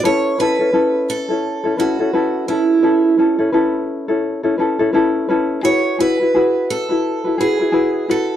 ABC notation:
X:1
M:4/4
L:1/16
Q:"Swing 16ths" 1/4=86
K:A
V:1 name="Steel-string acoustic guitar"
c2 B4 A4 F4 E2- | E2 z12 z2 | c2 B4 A4 G4 A2 |]
V:2 name="Ukulele"
[CEAB]2 [CEAB] [CEA] [CEAB]3 [CEA]2 [CEA] [CEAB] [CEA] [CEAB]2 [CEAB]2 | [CEAB]2 [CEAB] [CEA] [CEAB]3 [CEA]2 [CEA] [CEAB] [CEA] [CEAB]2 [CEAB]2 | [EFGB]2 [EFGB] [EFB] [EFGB]3 [EFB]2 [EFB] [EFGB] [EFB] [EFGB]2 [EFB]2 |]